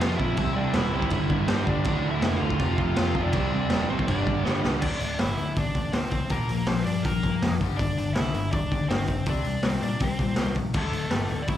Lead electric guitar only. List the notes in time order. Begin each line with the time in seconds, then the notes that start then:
0.00 F4 F5
0.15 E4 E5
0.56 D4 D5
0.74 E4 E5
1.48 C4 C5
1.67 D4 D5
2.11 E4 E5
2.38 F4 F5
2.76 F4 F5
3.23 D4 D5
3.90 C4 C5
4.09 D4 D5
4.81 D4 D5
5.19 E4 E5
5.58 D4 D5
5.94 C4 C5
6.31 A#3 A#4
6.67 C4 C5
6.84 D4 D5
7.02 A#3 A#4
7.76 D4 D5
8.13 E4 E5
8.51 D4 D5
8.89 C4 C5
9.29 D4 D5
9.66 C4 C5
9.83 D4 D5
10.03 C4 C5
10.77 A3 A4
11.42 D5
11.48 E4 E5